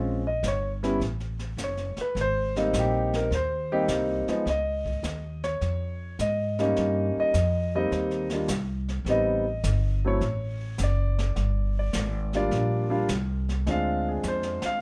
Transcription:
0.00 0.41 A#1 medium
0.00 0.21 G#3 medium
0.00 0.21 C4 medium
0.00 0.22 C#4 medium
0.00 0.21 F4 medium
0.27 0.44 D#5 medium
0.43 0.99 G1 medium
0.43 snare medium
0.43 hi-hat pedal medium
0.48 0.70 C#5 medium
0.83 0.99 G3 medium
0.83 0.99 B3 medium
0.83 1.00 C#4 medium
0.83 0.99 E4 medium
0.83 snare soft
1.00 1.56 A1 medium
1.00 brush sweep soft
1.00 snare soft
1.20 snare soft
1.39 snare soft
1.57 1.95 F#1 medium
1.57 snare medium
1.57 hi-hat pedal medium
1.64 2.00 C#5 medium
1.77 snare soft
1.97 muted upright bass stroke soft
1.97 snare soft
2.01 2.17 B4 medium
2.15 2.71 G#1 medium
2.15 brush sweep medium
2.15 snare soft
2.21 2.57 C5 loud
2.56 3.28 G3 medium
2.56 3.28 A#3 medium
2.56 3.28 C4 medium
2.56 3.28 D#4 medium
2.56 snare soft
2.73 3.29 A#1 medium
2.73 snare medium
2.73 hi-hat pedal medium
2.79 3.15 G4 medium
3.13 3.32 A#4 medium
3.13 snare soft
3.31 3.87 D#2 medium
3.31 brush sweep soft
3.31 snare soft
3.35 3.72 C5 medium
3.72 4.25 G3 medium
3.72 4.25 A#3 medium
3.72 4.25 C4 medium
3.72 4.25 D#4 medium
3.72 3.82 G4 medium
3.88 4.25 C2 medium
3.88 snare medium
3.88 hi-hat pedal medium
4.28 4.44 F3 medium
4.28 4.45 G#3 medium
4.28 4.45 B3 medium
4.28 4.45 D#4 medium
4.28 muted upright bass stroke soft
4.28 snare soft
4.46 5.02 C#2 medium
4.46 5.41 D#5 medium
4.46 brush sweep soft
4.46 snare soft
4.86 kick medium
5.03 5.59 D#2 medium
5.03 snare medium
5.03 hi-hat pedal medium
5.43 6.15 C#5 medium
5.43 snare soft
5.61 6.17 F2 medium
5.61 brush sweep soft
5.61 snare soft
6.19 6.75 G#2 medium
6.19 7.13 D#5 medium
6.19 snare medium
6.19 hi-hat pedal medium
6.59 7.30 G3 medium
6.59 7.31 A#3 medium
6.59 7.31 C#4 medium
6.59 7.31 D#4 medium
6.59 snare soft
6.76 7.13 G2 medium
6.76 brush sweep soft
6.76 snare soft
7.16 7.71 D#5 medium
7.16 muted upright bass stroke soft
7.34 7.90 F2 medium
7.34 snare medium
7.34 hi-hat pedal medium
7.75 8.28 G3 medium
7.75 8.28 A#3 medium
7.75 8.28 C4 medium
7.75 8.29 D#4 medium
7.75 8.46 D#5 medium
7.91 8.47 D#2 medium
7.91 brush sweep medium
7.91 snare soft
8.11 snare soft
8.30 8.48 G3 medium
8.30 8.48 A#3 medium
8.30 8.48 D4 medium
8.30 8.48 F4 medium
8.30 snare soft
8.48 9.04 C2 medium
8.48 snare medium
8.48 hi-hat pedal medium
8.88 snare soft
9.05 9.61 A1 medium
9.05 9.43 G3 medium
9.05 9.43 B3 medium
9.05 9.43 C4 medium
9.05 brush sweep medium
9.05 snare soft
9.09 9.44 D#4 medium
9.09 10.02 D#5 medium
9.63 10.19 G1 medium
9.63 snare medium
9.63 hi-hat pedal medium
10.05 10.20 F#3 medium
10.05 10.20 A3 medium
10.05 10.21 C4 medium
10.05 10.21 E4 medium
10.05 10.77 C#5 medium
10.21 10.77 A1 medium
10.21 brush sweep soft
10.21 snare soft
10.78 11.35 F#1 medium
10.78 snare medium
10.78 hi-hat pedal medium
10.84 11.74 D5 medium
11.19 snare soft
11.36 11.92 G1 medium
11.36 brush sweep medium
11.36 snare soft
11.79 12.31 D5 medium
11.93 12.50 G#1 medium
11.93 snare medium
11.93 hi-hat pedal medium
12.33 12.88 G3 medium
12.33 12.88 A#3 medium
12.33 12.88 D4 medium
12.33 12.88 F4 medium
12.33 13.06 D5 medium
12.33 snare soft
12.51 13.07 A#1 medium
12.51 brush sweep medium
12.51 snare soft
12.90 13.06 G3 medium
12.90 13.07 A#3 medium
12.90 13.07 D4 medium
12.90 13.07 F4 medium
13.08 13.65 C2 medium
13.08 snare medium
13.08 hi-hat pedal medium
13.49 snare soft
13.67 14.23 D2 medium
13.67 14.81 G#3 medium
13.67 14.81 C4 medium
13.67 14.81 D4 medium
13.67 14.81 F4 medium
13.67 14.07 F5 medium
13.67 brush sweep soft
13.67 snare soft
14.09 14.25 G#4 medium
14.23 14.61 F2 medium
14.23 snare soft
14.23 hi-hat pedal medium
14.28 14.65 C5 medium
14.43 snare soft
14.62 14.81 F5 loud
14.62 muted upright bass stroke soft
14.62 snare medium

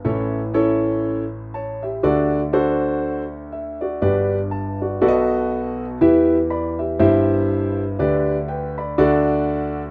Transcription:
0.05 1.99 A1 medium
0.05 1.99 A2 medium
0.05 0.40 C#4 medium
0.05 0.40 E4 medium
0.05 0.40 A4 medium
0.05 0.40 C#5 medium
0.54 1.22 C#4 medium
0.54 1.23 E4 medium
0.54 1.23 A4 medium
0.54 1.23 C#5 medium
1.54 1.82 C#5 medium
1.54 1.81 A5 medium
1.83 2.30 G4 medium
1.83 2.30 E5 medium
2.03 3.98 D2 medium
2.03 3.98 D3 medium
2.03 2.39 D4 medium
2.03 2.39 F#4 medium
2.03 2.39 A4 medium
2.03 2.39 D5 medium
2.53 3.21 D4 medium
2.53 3.22 F#4 medium
2.53 3.22 A4 medium
2.53 3.22 C5 medium
3.52 3.80 E5 medium
3.81 4.29 F#4 soft
3.81 4.00 D5 medium
4.01 4.97 G1 medium
4.01 4.97 G2 medium
4.01 4.37 D4 medium
4.01 4.38 G4 medium
4.01 4.38 B4 medium
4.01 4.38 D5 medium
4.51 4.79 A5 medium
4.82 5.00 F#4 soft
4.82 5.01 D5 medium
5.02 5.97 B1 medium
5.02 5.97 B2 medium
5.02 5.84 F#4 medium
5.02 5.84 A4 medium
5.02 5.84 B4 medium
5.02 5.09 D5 medium
5.08 5.88 D#5 loud
6.01 6.96 E2 medium
6.01 6.96 E3 medium
6.01 6.37 E4 medium
6.01 6.37 G4 medium
6.01 6.37 B4 medium
6.01 6.37 E5 medium
6.50 6.78 D5 medium
6.50 6.78 B5 medium
6.79 6.98 G4 soft
6.79 6.98 E5 medium
6.99 7.95 G1 medium
6.99 7.95 G2 medium
6.99 7.82 E4 medium
6.99 7.83 G4 medium
6.99 7.82 C5 medium
6.99 7.83 E5 medium
7.99 8.94 D2 medium
7.99 8.95 D3 medium
7.99 8.35 D4 medium
7.99 8.35 G4 medium
7.99 8.35 B4 medium
7.99 8.35 D5 medium
8.48 8.77 B4 medium
8.48 8.76 G5 medium
8.78 8.97 D5 medium
8.78 9.25 B5 medium
8.98 9.91 D2 medium
8.98 9.91 D3 medium
8.98 9.81 D4 medium
8.98 9.81 F#4 medium
8.98 9.81 A4 medium
8.98 9.81 D5 medium

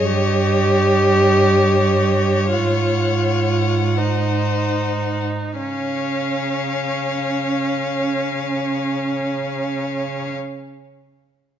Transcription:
0.00 3.99 C#5 soft
0.00 2.49 D#5 soft
0.06 2.55 G2 soft
0.06 2.52 G4 medium
2.52 5.27 G#2 soft
2.52 3.99 F4 soft
2.52 5.22 F#5 soft
3.97 5.58 D#4 soft
3.97 5.26 C5 soft
5.58 10.32 C#3 soft
5.58 10.31 C#4 soft
5.58 10.31 C#5 soft
5.58 10.32 F5 soft

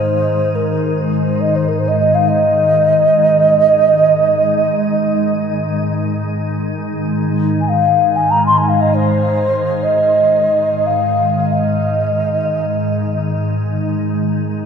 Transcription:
0.00 12.43 G#2 medium
0.00 12.43 D#3 medium
0.00 0.57 C5 medium
0.55 0.99 A#4 medium
1.25 1.42 C5 medium
1.41 1.57 D#5 medium
1.56 1.69 C5 medium
1.68 1.80 A#4 medium
1.79 1.90 C5 medium
1.88 1.99 D#5 medium
1.99 2.16 D#5 medium
2.14 2.30 F5 medium
2.28 6.15 D#5 medium
7.61 7.70 G#5 medium
7.68 8.17 F5 medium
8.16 8.32 G#5 medium
8.31 8.46 A#5 medium
8.46 8.59 C6 medium
8.58 8.70 G#5 medium
8.68 8.82 F5 medium
8.81 8.97 D#5 medium
8.96 9.85 C5 medium
9.83 10.88 D#5 medium
10.86 11.40 F5 medium
11.40 11.53 F5 medium
11.52 13.51 D#5 medium
12.44 14.66 G#2 medium
12.44 14.66 D#3 medium

